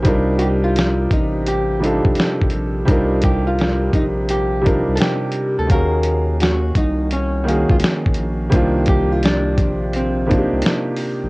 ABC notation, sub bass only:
X:1
M:4/4
L:1/16
Q:"Swing 16ths" 1/4=85
K:Eblyd
V:1 name="Sub bass" clef=bass
C,,6 A,,,4- A,,, B,,, z2 B,,,2 | C,,6 B,,,4- B,,, C,, z3 D,, | E,,6 C,,4- C,, _D,, z2 B,,,2 | C,,6 B,,,4- B,,, C,, z3 B,,, |]